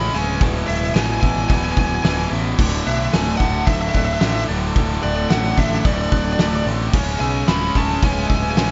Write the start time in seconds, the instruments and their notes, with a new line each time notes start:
Already playing: overdriven electric guitar C#3 G#3 C#4, string section G#3 C#4 B4 E5, lead electric guitar B5, glockenspiel E6
0.14 picked electric bass D1, overdriven electric guitar C#3 G#3 C#4, lead electric guitar G#5, glockenspiel G#6, open hi-hat
0.40 picked electric bass D1, overdriven electric guitar E2 B2 E3, string section E4, kick, open hi-hat
0.68 picked electric bass D1, lead electric guitar E5, glockenspiel G#6, open hi-hat
0.94 picked electric bass A1, overdriven electric guitar E2 B2 E3, lead electric guitar G#5, snare, open hi-hat
1.21 picked electric bass A1, overdriven electric guitar E2 B2 E3, lead electric guitar G#5, glockenspiel E6, kick, open hi-hat
1.37 snare
1.49 picked electric bass D1, overdriven electric guitar E2 B2 E3, lead electric guitar G#5, kick, open hi-hat
1.57 lead electric guitar G#5
1.64 lead electric guitar G#5
1.72 lead electric guitar G#5
1.77 picked electric bass D1, lead electric guitar G#5, glockenspiel G#6, kick, open hi-hat
1.88 lead electric guitar G#5
1.95 lead electric guitar G#5
2.03 picked electric bass D1, overdriven electric guitar E2 B2 E3, lead electric guitar G#5, snare, open hi-hat
2.11 lead electric guitar G#5
2.19 lead electric guitar G#5
2.30 picked electric bass A1, overdriven electric guitar E2 B2 E3, glockenspiel B6, open hi-hat
2.58 picked electric bass D1, overdriven electric guitar D2 A2 D3, string section F#3 D4 A4, kick, crash
2.86 picked electric bass B1, lead electric guitar E5, glockenspiel F#6, open hi-hat
3.13 picked electric bass D1, overdriven electric guitar D2 A2 D3, lead electric guitar G#5, snare, open hi-hat
3.27 snare
3.37 picked electric bass D1, overdriven electric guitar D2, lead electric guitar F#5, glockenspiel D6, kick, open hi-hat
3.41 overdriven electric guitar A2 D3
3.66 picked electric bass D1, overdriven electric guitar D2 A2 D3, lead electric guitar E5, kick, open hi-hat
3.73 lead electric guitar E5
3.81 lead electric guitar E5
3.89 lead electric guitar E5
3.94 picked electric bass D1, lead electric guitar E5, glockenspiel F#6, kick, open hi-hat
4.05 lead electric guitar E5
4.14 lead electric guitar E5
4.20 picked electric bass A1, overdriven electric guitar D2 A2 D3, lead electric guitar E5, snare, open hi-hat
4.28 lead electric guitar E5
4.35 lead electric guitar E5
4.48 picked electric bass D1, overdriven electric guitar D2 A2 D3, glockenspiel A6, open hi-hat
4.76 picked electric bass D1, overdriven electric guitar D2 A2 D3, kick, open hi-hat
5.03 picked electric bass D1, lead electric guitar D5, glockenspiel F#6, open hi-hat
5.30 picked electric bass A1, overdriven electric guitar D2 A2 D3, lead electric guitar F#5, snare, open hi-hat
5.45 snare
5.57 picked electric bass A1, overdriven electric guitar D2 A2 D3, lead electric guitar E5, glockenspiel D6, kick, open hi-hat
5.72 snare
5.84 picked electric bass D1, overdriven electric guitar D2 A2 D3, lead electric guitar D5, kick, open hi-hat
5.94 lead electric guitar D5
6.02 lead electric guitar D5
6.10 picked electric bass D1, lead electric guitar D5, glockenspiel F#6, kick, open hi-hat
6.18 lead electric guitar D5
6.25 lead electric guitar D5
6.33 lead electric guitar D5
6.38 picked electric bass D1, overdriven electric guitar D2 A2 D3, lead electric guitar D5, snare, open hi-hat
6.49 lead electric guitar D5
6.56 lead electric guitar D5
6.66 picked electric bass A1, overdriven electric guitar D2 A2 D3, glockenspiel A6, open hi-hat
6.93 picked electric bass D1, overdriven electric guitar C#3 G#3 C#4, string section G#3 C#4 B4 E5, kick, crash
7.20 picked electric bass B1, lead electric guitar G#5, glockenspiel E6, open hi-hat
7.47 picked electric bass D1, overdriven electric guitar C#3 G#3 C#4, lead electric guitar B5, snare, open hi-hat
7.62 snare
7.75 picked electric bass D1, overdriven electric guitar C#3 G#3 C#4, lead electric guitar A5, glockenspiel C#6, kick, open hi-hat
7.90 snare
8.02 picked electric bass D1, overdriven electric guitar C#3 G#3 C#4, lead electric guitar G#5, kick, open hi-hat
8.13 lead electric guitar G#5
8.19 lead electric guitar G#5
8.27 picked electric bass D1, lead electric guitar G#5, glockenspiel E6, kick, open hi-hat
8.36 lead electric guitar G#5
8.43 lead electric guitar G#5
8.51 lead electric guitar G#5
8.56 picked electric bass A1, overdriven electric guitar C#3 G#3 C#4, lead electric guitar G#5, snare, open hi-hat
8.66 lead electric guitar G#5